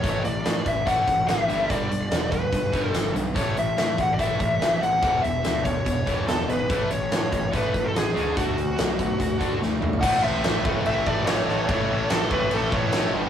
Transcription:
Already playing: lead electric guitar C#5
0.03 picked electric bass A1, distorted electric guitar A2 E3 A3, kick, closed hi-hat
0.23 picked electric bass A1, distorted electric guitar A2 E3, lead electric guitar D5, closed hi-hat
0.44 distorted electric guitar A2 E3, picked electric bass A2, snare, closed hi-hat
0.65 picked electric bass A1, distorted electric guitar A2 E3, lead electric guitar E5, kick, closed hi-hat
0.85 picked electric bass A1, distorted electric guitar A2 E3 A3, lead electric guitar F#5, kick, closed hi-hat
1.06 picked electric bass A1, distorted electric guitar A2 E3, kick, closed hi-hat
1.26 picked electric bass A1, distorted electric guitar A2 E3, lead electric guitar E5, snare, closed hi-hat
1.47 picked electric bass G1, distorted electric guitar G2 D3 G3, closed hi-hat
1.69 picked electric bass G1, distorted electric guitar G2 D3 G3, lead electric guitar D5, kick, closed hi-hat
1.90 picked electric bass G1, distorted electric guitar G2 D3, closed hi-hat
2.11 picked electric bass E1, distorted electric guitar G2 D3, snare, closed hi-hat
2.31 distorted electric guitar G2 D3, lead electric guitar B4, kick, closed hi-hat
2.53 picked electric bass G1, distorted electric guitar G2 D3, kick, closed hi-hat
2.73 picked electric bass G1, distorted electric guitar G2 D3 G3, kick, closed hi-hat
2.89 lead electric guitar A4
2.94 picked electric bass G1, distorted electric guitar G2 D3, snare, closed hi-hat
3.15 picked electric bass B1, distorted electric guitar G2 D3, closed hi-hat
3.34 picked electric bass A1, distorted electric guitar A2 E3 A3, lead electric guitar C#5, kick, closed hi-hat
3.56 picked electric bass A1, distorted electric guitar A2 E3, lead electric guitar E5, closed hi-hat
3.77 distorted electric guitar A2 E3, picked electric bass A2, lead electric guitar E5, snare, closed hi-hat
3.97 picked electric bass A1, distorted electric guitar A2 E3, lead electric guitar F#5, kick, closed hi-hat
4.13 lead electric guitar D5
4.19 picked electric bass A1, distorted electric guitar A2 E3 A3, lead electric guitar E5, kick, closed hi-hat
4.40 picked electric bass A1, distorted electric guitar A2 E3, kick, closed hi-hat
4.61 picked electric bass A1, distorted electric guitar A2 E3, snare, closed hi-hat
4.82 picked electric bass A1, distorted electric guitar A2 E3, lead electric guitar F#5, closed hi-hat
5.03 picked electric bass E1, distorted electric guitar E2 B2 E3, kick, closed hi-hat
5.23 picked electric bass E1, distorted electric guitar E2 B2, lead electric guitar E5, closed hi-hat
5.44 picked electric bass D2, distorted electric guitar E2 B2, snare, closed hi-hat
5.64 distorted electric guitar E2 B2, lead electric guitar C#5, kick, closed hi-hat
5.86 picked electric bass E1, distorted electric guitar E2 B2, kick, closed hi-hat
6.06 picked electric bass E1, distorted electric guitar E2 B2 E3, kick, closed hi-hat
6.28 picked electric bass E1, distorted electric guitar E2 B2, lead electric guitar A4, snare, closed hi-hat
6.48 picked electric bass G#1, distorted electric guitar E2 B2, lead electric guitar B4, closed hi-hat
6.69 picked electric bass A1, distorted electric guitar A2 E3 A3, kick, closed hi-hat
6.90 picked electric bass A1, distorted electric guitar A2 E3, lead electric guitar C#5, closed hi-hat
7.12 distorted electric guitar A2 E3, picked electric bass A2, snare, closed hi-hat
7.31 picked electric bass A1, distorted electric guitar A2 E3, kick, closed hi-hat
7.52 picked electric bass A1, distorted electric guitar A2 E3 A3, kick, closed hi-hat
7.56 lead electric guitar B4
7.73 picked electric bass A1, distorted electric guitar A2 E3, kick, closed hi-hat
7.84 lead electric guitar A4
7.94 picked electric bass A1, distorted electric guitar A2 E3, lead electric guitar G#4, snare, closed hi-hat
8.15 picked electric bass D2, distorted electric guitar D3 A3 D4, closed hi-hat
8.36 picked electric bass D2, distorted electric guitar D3 A3 D4, lead electric guitar F#4, kick, closed hi-hat
8.56 picked electric bass D2, distorted electric guitar D3 A3, closed hi-hat
8.78 picked electric bass B1, distorted electric guitar D3 A3, snare, closed hi-hat
8.99 distorted electric guitar D3 A3, kick, closed hi-hat
9.20 picked electric bass D2, distorted electric guitar D3 A3, kick, closed hi-hat
9.40 picked electric bass D2, distorted electric guitar D3 A3 D4, kick, closed hi-hat
9.61 picked electric bass D2, distorted electric guitar D3 A3, snare
9.73 high tom
9.81 picked electric bass D2, distorted electric guitar D3 A3, mid tom
9.93 floor tom
10.01 picked electric bass A1, distorted electric guitar A2 E3 A3, lead electric guitar F#5, kick, crash
10.05 distorted electric guitar A3
10.23 picked electric bass A1, distorted electric guitar A2 E3 A3, lead electric guitar E5
10.44 picked electric bass A1, distorted electric guitar A2 E3 A3, snare, crash
10.62 picked electric bass F#1, distorted electric guitar A2 E3 A3, kick
10.85 picked electric bass A1, distorted electric guitar A2 E3 A3, lead electric guitar E5, crash
11.06 picked electric bass A1, distorted electric guitar A2 E3 A3, lead electric guitar D5, kick
11.25 picked electric bass A1, distorted electric guitar A2 E3 A3, lead electric guitar C#5, snare, crash
11.39 snare
11.47 picked electric bass A1, distorted electric guitar A2 E3 A3, snare
11.67 picked electric bass A1, distorted electric guitar A2 E3 A3, lead electric guitar C#5, kick, crash
11.90 picked electric bass A1, distorted electric guitar A2 E3 A3
12.09 picked electric bass A1, distorted electric guitar A2 E3 A3, lead electric guitar A4, snare, crash
12.30 picked electric bass A1, distorted electric guitar A2 E3 A3, lead electric guitar B4, kick
12.51 picked electric bass A1, distorted electric guitar A2 E3 A3, lead electric guitar A4, crash
12.71 picked electric bass A1, distorted electric guitar A2 E3 A3, lead electric guitar C#5, kick
12.92 picked electric bass A1, distorted electric guitar A2 E3 A3, snare, crash
13.12 picked electric bass G1, distorted electric guitar G2 D3 G3

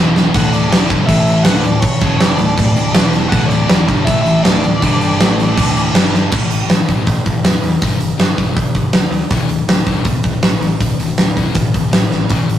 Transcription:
Already playing: picked electric bass E1, distorted electric guitar E2 B2
0.00 distorted electric guitar E3
0.16 snare
0.33 picked electric bass D1, distorted electric guitar D2 A2 D3, lead electric guitar F#5, kick, crash
0.53 lead electric guitar D5, crash
0.70 picked electric bass E1, distorted electric guitar E2 B2 E3, snare, crash
0.90 picked electric bass G1, distorted electric guitar G2 D3 G3, kick, crash
1.06 picked electric bass A1, distorted electric guitar A2 E3 A3, lead electric guitar E5, kick, crash
1.27 crash
1.43 picked electric bass D1, distorted electric guitar D2 A2 D3, lead electric guitar F#5, snare, crash
1.60 picked electric bass D1, lead electric guitar D5, crash
1.65 distorted electric guitar D2 A2
1.80 lead electric guitar C#5, kick, crash
2.01 picked electric bass F#1, distorted electric guitar F#2 C#3 F#3, kick, crash
2.17 lead electric guitar D5, snare, crash
2.38 picked electric bass D1, distorted electric guitar D2 A2, crash
2.57 picked electric bass D1, distorted electric guitar D2 A2, kick, crash
2.76 picked electric bass D1, distorted electric guitar D2 A2, crash
2.91 overdriven electric guitar E2, snare, crash
2.95 picked electric bass E1, distorted electric guitar E2 B2 E3
3.13 crash
3.29 picked electric bass D1, overdriven electric guitar D2 A2, lead electric guitar F#5, kick, crash
3.33 distorted electric guitar D2 A2 D3
3.46 lead electric guitar C#5 D5
3.51 crash
3.68 picked electric bass E1, distorted electric guitar E2 B2 E3, snare, crash
3.88 picked electric bass G1, distorted electric guitar G2 D3 G3, kick, crash
4.05 picked electric bass A1, distorted electric guitar A2 E3, lead electric guitar E5, kick, crash
4.09 distorted electric guitar A3
4.22 lead electric guitar E5
4.26 crash
4.42 picked electric bass D1, distorted electric guitar D2 A2 D3, lead electric guitar D5, snare, crash
4.62 picked electric bass D1, distorted electric guitar D2 A2, crash
4.82 picked electric bass G1, distorted electric guitar G2 D3 G3, kick, crash
5.01 crash
5.18 picked electric bass A1, distorted electric guitar A2 E3 A3, snare, crash
5.40 crash
5.57 picked electric bass D1, distorted electric guitar D2 A2 D3, kick, crash
5.77 crash
5.94 picked electric bass G1, distorted electric guitar G2 D3 G3, snare, crash
6.14 snare
6.32 picked electric bass A1, distorted electric guitar A2 E3 A3, kick, crash
6.50 picked electric bass A1, distorted electric guitar A2 E3, open hi-hat
6.69 picked electric bass A2, distorted electric guitar A2 E3, snare, open hi-hat
6.88 picked electric bass A1, distorted electric guitar A2 E3 A3, kick, open hi-hat
7.05 picked electric bass A1, distorted electric guitar A2 E3, kick, open hi-hat
7.24 picked electric bass A1, distorted electric guitar A2 E3, kick, open hi-hat
7.43 picked electric bass E2, distorted electric guitar A2 E3, snare, open hi-hat
7.62 picked electric bass E2, distorted electric guitar A2 E3, open hi-hat
7.81 picked electric bass G1, distorted electric guitar G2 D3 G3, kick, open hi-hat
7.99 picked electric bass G1, distorted electric guitar G2 D3, open hi-hat
8.18 distorted electric guitar G2 D3, picked electric bass G2, snare, open hi-hat
8.36 picked electric bass G1, distorted electric guitar G2 D3 G3, kick, open hi-hat
8.56 picked electric bass G1, distorted electric guitar G2 D3, kick, open hi-hat
8.75 picked electric bass G1, distorted electric guitar G2 D3, kick, open hi-hat
8.93 picked electric bass D2, distorted electric guitar G2 D3, snare, open hi-hat
9.11 picked electric bass D2, distorted electric guitar G2 D3, open hi-hat
9.30 picked electric bass D1, distorted electric guitar D2 A2 D3, kick, open hi-hat
9.49 picked electric bass D1, distorted electric guitar D2 A2, open hi-hat
9.68 picked electric bass D2, distorted electric guitar D2 A2, snare, open hi-hat
9.86 picked electric bass D1, distorted electric guitar D2 A2 D3, kick, open hi-hat
10.05 picked electric bass D1, distorted electric guitar D2 A2, kick, open hi-hat
10.23 picked electric bass D1, distorted electric guitar D2 A2, kick, open hi-hat
10.42 picked electric bass A1, distorted electric guitar D2 A2, snare, open hi-hat
10.60 picked electric bass A1, distorted electric guitar D2 A2, open hi-hat
10.80 picked electric bass D1, distorted electric guitar D2 A2, kick, open hi-hat
10.98 picked electric bass D1, distorted electric guitar D2 A2, open hi-hat
11.17 distorted electric guitar D2 A2, picked electric bass D2, snare, open hi-hat
11.36 picked electric bass D1, distorted electric guitar D2 A2 D3, kick, open hi-hat
11.54 picked electric bass D1, distorted electric guitar D2 A2, kick, open hi-hat
11.72 picked electric bass D1, distorted electric guitar D2 A2, kick, open hi-hat
11.91 picked electric bass A1, distorted electric guitar D2 A2, snare, open hi-hat
12.10 picked electric bass G#1, distorted electric guitar D2 A2, snare
12.29 picked electric bass A1, distorted electric guitar A2 E3 A3, kick, open hi-hat
12.48 picked electric bass A1, distorted electric guitar A2 E3, open hi-hat

